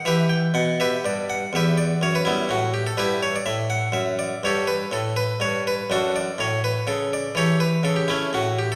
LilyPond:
<<
  \new Staff \with { instrumentName = "Harpsichord" } { \time 12/8 \key e \dorian \tempo 4. = 82 <g' b' e''>8 g''8 fis''8 <g' b' e''>8 d''8 fis''8 <g' b' e''>8 d''8 cis''16 b'16 <g b e'>8 fis'8 g'16 a'16 | \key d \major <e' g' b'>8 cis''16 d''16 e''8 fis''8 e''8 d''8 <g' a' cis''>8 b'8 a'8 b'8 cis''8 b'8 | <d' fis' a'>8 d''8 cis''8 b'8 a'8 d''8 <g' a' cis''>8 b'8 a'16 g'16 <a cis' e'>8 fis'8 g'16 a'16 | }
  \new Staff \with { instrumentName = "Harpsichord" } { \clef bass \time 12/8 \key e \dorian e4 b,4 g,4 e,4 fis,4 a,4 | \key d \major g,4 a,4 fis,4 g,4 a,4 g,4 | fis,4 a,4 cis4 e4 cis4 a,4 | }
>>